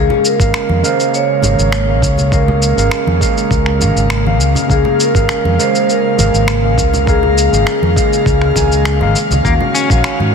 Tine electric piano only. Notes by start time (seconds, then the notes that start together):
Already playing: C#3 G#3 A#4 F5
0.38 C#3 G#3 A#4 F5
0.82 C#3 G#3 A#4 F5
1.42 C#3 G#3 A#4 F5
1.87 C#3 G#3 A#4 F5
2.30 C#3 G#3 A#4 F5
2.76 C#3 G#3 A#4 F5
3.19 C#3 G#3 A#4 F5
3.79 C#3 G#3 A#4 F5
4.24 C#3 G#3 A#4 F5
4.68 C#3 G#3 A#4 F5
5.13 C#3 G#3 A#4 F5
5.57 C#3 G#3 A#4 F5
6.17 C#3 G#3 A#4 F5
6.62 C#3 G#3 A#4 F5
7.06 C#3 G#3 A#4 F5
7.51 C#3 G#3 A#4 F5
7.95 C#3 G#3 A#4 F5
8.54 C#3 G#3 A#4 G#5
8.99 C#3 G#3 A#4 F5
9.43 D#3 C#4 F#4 F5
9.88 D#3 C#4 F#4 F5